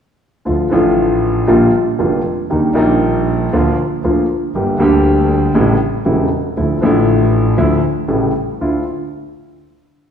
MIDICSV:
0, 0, Header, 1, 3, 480
1, 0, Start_track
1, 0, Key_signature, -1, "minor"
1, 0, Tempo, 508906
1, 435, Time_signature, 4, 2, 24, 8
1, 9535, End_track
2, 0, Start_track
2, 0, Title_t, "Grand piano"
2, 0, Program_c, 0, 0
2, 427, Note_on_c, 0, 50, 40
2, 432, Note_on_c, 0, 38, 41
2, 433, Note_on_c, 0, 53, 31
2, 433, Note_on_c, 0, 65, 37
2, 437, Note_on_c, 0, 57, 30
2, 636, Note_off_c, 0, 38, 0
2, 637, Note_off_c, 0, 50, 0
2, 637, Note_off_c, 0, 53, 0
2, 637, Note_off_c, 0, 65, 0
2, 639, Note_off_c, 0, 57, 0
2, 656, Note_on_c, 0, 50, 58
2, 672, Note_on_c, 0, 53, 54
2, 678, Note_on_c, 0, 45, 65
2, 680, Note_on_c, 0, 33, 69
2, 682, Note_on_c, 0, 57, 52
2, 693, Note_on_c, 0, 65, 63
2, 1355, Note_off_c, 0, 50, 0
2, 1363, Note_off_c, 0, 53, 0
2, 1366, Note_off_c, 0, 45, 0
2, 1367, Note_off_c, 0, 33, 0
2, 1368, Note_off_c, 0, 57, 0
2, 1373, Note_off_c, 0, 65, 0
2, 1387, Note_on_c, 0, 50, 56
2, 1390, Note_on_c, 0, 55, 51
2, 1391, Note_on_c, 0, 34, 66
2, 1393, Note_on_c, 0, 58, 46
2, 1396, Note_on_c, 0, 46, 70
2, 1399, Note_on_c, 0, 65, 64
2, 1597, Note_off_c, 0, 50, 0
2, 1598, Note_off_c, 0, 55, 0
2, 1599, Note_off_c, 0, 34, 0
2, 1599, Note_off_c, 0, 58, 0
2, 1601, Note_off_c, 0, 46, 0
2, 1602, Note_off_c, 0, 65, 0
2, 1875, Note_on_c, 0, 41, 47
2, 1875, Note_on_c, 0, 50, 43
2, 1876, Note_on_c, 0, 29, 48
2, 1876, Note_on_c, 0, 55, 36
2, 1876, Note_on_c, 0, 58, 37
2, 1880, Note_on_c, 0, 65, 45
2, 2081, Note_off_c, 0, 41, 0
2, 2082, Note_off_c, 0, 29, 0
2, 2082, Note_off_c, 0, 50, 0
2, 2082, Note_off_c, 0, 55, 0
2, 2082, Note_off_c, 0, 58, 0
2, 2084, Note_off_c, 0, 65, 0
2, 2357, Note_on_c, 0, 55, 33
2, 2360, Note_on_c, 0, 50, 38
2, 2362, Note_on_c, 0, 51, 45
2, 2362, Note_on_c, 0, 58, 37
2, 2363, Note_on_c, 0, 39, 44
2, 2365, Note_on_c, 0, 63, 42
2, 2564, Note_off_c, 0, 55, 0
2, 2565, Note_off_c, 0, 50, 0
2, 2566, Note_off_c, 0, 39, 0
2, 2566, Note_off_c, 0, 51, 0
2, 2566, Note_off_c, 0, 58, 0
2, 2568, Note_off_c, 0, 63, 0
2, 2578, Note_on_c, 0, 62, 59
2, 2588, Note_on_c, 0, 55, 52
2, 2594, Note_on_c, 0, 46, 68
2, 2596, Note_on_c, 0, 34, 67
2, 2600, Note_on_c, 0, 58, 55
2, 2612, Note_on_c, 0, 63, 71
2, 3276, Note_off_c, 0, 62, 0
2, 3281, Note_off_c, 0, 55, 0
2, 3284, Note_off_c, 0, 46, 0
2, 3285, Note_off_c, 0, 34, 0
2, 3287, Note_off_c, 0, 58, 0
2, 3293, Note_off_c, 0, 63, 0
2, 3324, Note_on_c, 0, 50, 69
2, 3329, Note_on_c, 0, 38, 69
2, 3331, Note_on_c, 0, 53, 56
2, 3333, Note_on_c, 0, 65, 66
2, 3335, Note_on_c, 0, 58, 54
2, 3529, Note_off_c, 0, 38, 0
2, 3529, Note_off_c, 0, 50, 0
2, 3529, Note_off_c, 0, 53, 0
2, 3530, Note_off_c, 0, 65, 0
2, 3531, Note_off_c, 0, 58, 0
2, 3812, Note_on_c, 0, 53, 39
2, 3814, Note_on_c, 0, 38, 47
2, 3815, Note_on_c, 0, 50, 50
2, 3815, Note_on_c, 0, 65, 44
2, 3817, Note_on_c, 0, 58, 42
2, 4008, Note_off_c, 0, 53, 0
2, 4009, Note_off_c, 0, 38, 0
2, 4010, Note_off_c, 0, 50, 0
2, 4010, Note_off_c, 0, 65, 0
2, 4011, Note_off_c, 0, 58, 0
2, 4291, Note_on_c, 0, 50, 41
2, 4291, Note_on_c, 0, 55, 34
2, 4294, Note_on_c, 0, 43, 46
2, 4295, Note_on_c, 0, 31, 47
2, 4295, Note_on_c, 0, 58, 36
2, 4296, Note_on_c, 0, 67, 40
2, 4487, Note_off_c, 0, 50, 0
2, 4487, Note_off_c, 0, 55, 0
2, 4488, Note_off_c, 0, 43, 0
2, 4489, Note_off_c, 0, 31, 0
2, 4489, Note_off_c, 0, 58, 0
2, 4489, Note_off_c, 0, 67, 0
2, 4503, Note_on_c, 0, 50, 62
2, 4518, Note_off_c, 0, 50, 0
2, 4523, Note_on_c, 0, 55, 55
2, 4525, Note_on_c, 0, 38, 71
2, 4526, Note_on_c, 0, 50, 76
2, 4527, Note_on_c, 0, 58, 56
2, 4545, Note_on_c, 0, 67, 70
2, 5202, Note_off_c, 0, 55, 0
2, 5203, Note_off_c, 0, 38, 0
2, 5203, Note_off_c, 0, 50, 0
2, 5204, Note_off_c, 0, 58, 0
2, 5213, Note_off_c, 0, 67, 0
2, 5230, Note_on_c, 0, 49, 55
2, 5231, Note_on_c, 0, 33, 70
2, 5234, Note_on_c, 0, 45, 69
2, 5234, Note_on_c, 0, 64, 60
2, 5235, Note_on_c, 0, 55, 53
2, 5237, Note_on_c, 0, 57, 51
2, 5434, Note_off_c, 0, 49, 0
2, 5435, Note_off_c, 0, 33, 0
2, 5436, Note_off_c, 0, 45, 0
2, 5436, Note_off_c, 0, 55, 0
2, 5436, Note_off_c, 0, 64, 0
2, 5438, Note_off_c, 0, 57, 0
2, 5708, Note_on_c, 0, 49, 39
2, 5709, Note_on_c, 0, 40, 45
2, 5711, Note_on_c, 0, 55, 38
2, 5714, Note_on_c, 0, 28, 51
2, 5714, Note_on_c, 0, 57, 38
2, 5717, Note_on_c, 0, 64, 46
2, 5912, Note_off_c, 0, 49, 0
2, 5913, Note_off_c, 0, 40, 0
2, 5914, Note_off_c, 0, 55, 0
2, 5915, Note_off_c, 0, 28, 0
2, 5915, Note_off_c, 0, 57, 0
2, 5917, Note_off_c, 0, 64, 0
2, 6198, Note_on_c, 0, 53, 34
2, 6199, Note_on_c, 0, 64, 42
2, 6200, Note_on_c, 0, 50, 40
2, 6202, Note_on_c, 0, 38, 43
2, 6202, Note_on_c, 0, 57, 33
2, 6396, Note_off_c, 0, 53, 0
2, 6397, Note_off_c, 0, 50, 0
2, 6397, Note_off_c, 0, 64, 0
2, 6398, Note_off_c, 0, 38, 0
2, 6398, Note_off_c, 0, 57, 0
2, 6422, Note_on_c, 0, 50, 60
2, 6434, Note_on_c, 0, 53, 55
2, 6438, Note_on_c, 0, 33, 72
2, 6447, Note_on_c, 0, 45, 67
2, 6451, Note_on_c, 0, 57, 55
2, 6464, Note_on_c, 0, 64, 66
2, 7110, Note_off_c, 0, 50, 0
2, 7115, Note_off_c, 0, 53, 0
2, 7118, Note_off_c, 0, 33, 0
2, 7122, Note_off_c, 0, 45, 0
2, 7124, Note_off_c, 0, 57, 0
2, 7130, Note_off_c, 0, 64, 0
2, 7142, Note_on_c, 0, 50, 67
2, 7144, Note_on_c, 0, 53, 50
2, 7149, Note_on_c, 0, 57, 52
2, 7149, Note_on_c, 0, 64, 67
2, 7150, Note_on_c, 0, 38, 71
2, 7349, Note_off_c, 0, 53, 0
2, 7351, Note_off_c, 0, 50, 0
2, 7352, Note_off_c, 0, 57, 0
2, 7352, Note_off_c, 0, 64, 0
2, 7353, Note_off_c, 0, 38, 0
2, 7622, Note_on_c, 0, 33, 50
2, 7624, Note_on_c, 0, 45, 45
2, 7624, Note_on_c, 0, 55, 37
2, 7624, Note_on_c, 0, 57, 38
2, 7625, Note_on_c, 0, 49, 42
2, 7634, Note_on_c, 0, 64, 44
2, 7831, Note_off_c, 0, 33, 0
2, 7831, Note_off_c, 0, 45, 0
2, 7831, Note_off_c, 0, 55, 0
2, 7831, Note_off_c, 0, 57, 0
2, 7832, Note_off_c, 0, 49, 0
2, 7836, Note_off_c, 0, 64, 0
2, 8122, Note_on_c, 0, 38, 41
2, 8123, Note_on_c, 0, 65, 46
2, 8127, Note_on_c, 0, 62, 38
2, 8127, Note_on_c, 0, 64, 37
2, 8321, Note_off_c, 0, 38, 0
2, 8322, Note_off_c, 0, 65, 0
2, 8323, Note_off_c, 0, 62, 0
2, 8324, Note_off_c, 0, 64, 0
2, 9535, End_track
3, 0, Start_track
3, 0, Title_t, "Double bass"
3, 0, Program_c, 1, 43
3, 441, Note_on_c, 1, 38, 53
3, 641, Note_off_c, 1, 38, 0
3, 680, Note_on_c, 1, 33, 79
3, 1367, Note_off_c, 1, 33, 0
3, 1404, Note_on_c, 1, 34, 84
3, 1605, Note_off_c, 1, 34, 0
3, 1889, Note_on_c, 1, 29, 49
3, 2089, Note_off_c, 1, 29, 0
3, 2368, Note_on_c, 1, 39, 56
3, 2569, Note_off_c, 1, 39, 0
3, 2609, Note_on_c, 1, 34, 86
3, 3292, Note_off_c, 1, 34, 0
3, 3333, Note_on_c, 1, 38, 83
3, 3530, Note_off_c, 1, 38, 0
3, 3805, Note_on_c, 1, 38, 51
3, 4005, Note_off_c, 1, 38, 0
3, 4288, Note_on_c, 1, 31, 57
3, 4485, Note_off_c, 1, 31, 0
3, 4525, Note_on_c, 1, 38, 92
3, 5203, Note_off_c, 1, 38, 0
3, 5234, Note_on_c, 1, 33, 85
3, 5436, Note_off_c, 1, 33, 0
3, 5715, Note_on_c, 1, 28, 51
3, 5916, Note_off_c, 1, 28, 0
3, 6198, Note_on_c, 1, 38, 57
3, 6396, Note_off_c, 1, 38, 0
3, 6436, Note_on_c, 1, 33, 89
3, 7117, Note_off_c, 1, 33, 0
3, 7151, Note_on_c, 1, 38, 79
3, 7353, Note_off_c, 1, 38, 0
3, 7632, Note_on_c, 1, 33, 49
3, 7836, Note_off_c, 1, 33, 0
3, 8119, Note_on_c, 1, 38, 45
3, 8319, Note_off_c, 1, 38, 0
3, 9535, End_track
0, 0, End_of_file